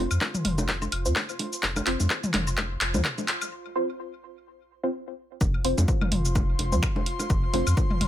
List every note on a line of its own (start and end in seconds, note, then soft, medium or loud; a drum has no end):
0.00 3.52 F4 medium
0.00 3.52 C5 loud
0.00 3.52 C6 medium
0.11 0.18 F2 medium
0.11 high woodblock medium
0.11 shaker soft
0.21 kick loud
0.21 clap medium
0.21 low bongo soft
0.34 mid tom medium
0.34 shaker soft
0.45 0.87 F1 medium
0.45 mid tom medium
0.45 open hi-hat medium
0.45 high woodblock soft
0.58 low bongo medium
0.58 shaker medium
0.68 kick loud
0.68 clap medium
0.82 low bongo soft
0.82 high woodblock medium
0.82 shaker soft
0.92 1.07 F1 loud
0.92 open hi-hat loud
0.92 high woodblock medium
1.05 1.13 F2 medium
1.05 1.11 C4 medium
1.05 1.11 F4 medium
1.05 1.11 C5 medium
1.05 shaker medium
1.16 kick loud
1.16 clap medium
1.16 low bongo medium
1.29 high woodblock soft
1.29 shaker soft
1.39 open hi-hat medium
1.39 low bongo soft
1.53 shaker medium
1.63 1.81 F1 medium
1.63 kick loud
1.63 clap medium
1.63 high woodblock medium
1.76 low bongo medium
1.76 high woodblock medium
1.76 shaker soft
1.87 1.96 F1 medium
1.87 1.99 C4 medium
1.87 1.99 F4 medium
1.87 1.99 C5 medium
1.87 clap medium
1.87 open hi-hat loud
2.00 2.07 F2 medium
2.00 low bongo soft
2.00 shaker medium
2.10 kick loud
2.10 clap medium
2.10 high woodblock soft
2.24 mid tom medium
2.24 shaker soft
2.34 2.76 F1 medium
2.34 clap medium
2.34 mid tom loud
2.34 open hi-hat medium
2.34 low bongo medium
2.47 high woodblock medium
2.47 shaker soft
2.57 kick loud
2.57 clap medium
2.57 low bongo soft
2.57 high woodblock medium
2.81 2.96 F1 loud
2.81 clap medium
2.81 open hi-hat loud
2.94 3.02 F2 medium
2.94 3.00 C4 medium
2.94 3.00 F4 medium
2.94 3.00 C5 medium
2.94 mid tom medium
2.94 low bongo medium
2.94 high woodblock soft
2.94 shaker medium
3.05 kick loud
3.05 clap medium
3.18 low bongo soft
3.18 shaker soft
3.28 clap medium
3.28 open hi-hat medium
3.28 high woodblock medium
3.41 high woodblock medium
3.41 shaker soft
3.76 3.87 C4 medium
3.76 3.87 F4 medium
3.76 3.87 C5 medium
4.83 4.89 C4 medium
4.83 4.89 F4 medium
4.83 4.89 C5 medium
5.41 5.59 F1 medium
5.41 8.08 F4 medium
5.41 kick loud
5.41 low bongo soft
5.41 shaker soft
5.54 high woodblock soft
5.64 5.74 F1 medium
5.64 5.76 C4 medium
5.64 5.76 F4 medium
5.64 8.08 C5 medium
5.64 5.76 C5 loud
5.64 open hi-hat loud
5.78 5.85 F2 medium
5.78 low bongo medium
5.78 shaker medium
5.88 kick loud
5.88 shaker soft
5.98 8.08 C6 loud
5.98 mid tom medium
5.98 low bongo soft
5.98 high woodblock medium
6.12 6.54 F1 medium
6.12 mid tom medium
6.12 open hi-hat medium
6.25 shaker medium
6.35 kick loud
6.35 low bongo medium
6.35 high woodblock soft
6.35 shaker soft
6.59 6.74 F1 loud
6.59 open hi-hat loud
6.59 low bongo soft
6.72 6.80 F2 medium
6.72 6.78 C4 medium
6.72 6.78 F4 medium
6.72 6.78 C5 medium
6.72 mid tom medium
6.72 shaker medium
6.83 finger snap loud
6.83 kick loud
6.83 high woodblock medium
6.83 shaker soft
6.96 low bongo medium
7.06 open hi-hat medium
7.19 low bongo soft
7.19 high woodblock soft
7.19 shaker medium
7.30 7.48 F1 loud
7.30 kick loud
7.30 shaker soft
7.53 7.63 F1 medium
7.53 7.65 C4 medium
7.53 7.65 F4 medium
7.53 7.65 C5 medium
7.53 open hi-hat loud
7.53 low bongo medium
7.67 7.74 F2 medium
7.67 high woodblock medium
7.67 shaker medium
7.77 kick loud
7.77 low bongo soft
7.77 shaker soft
7.90 mid tom medium
8.01 8.08 F1 medium
8.01 mid tom medium
8.01 open hi-hat medium
8.01 high woodblock soft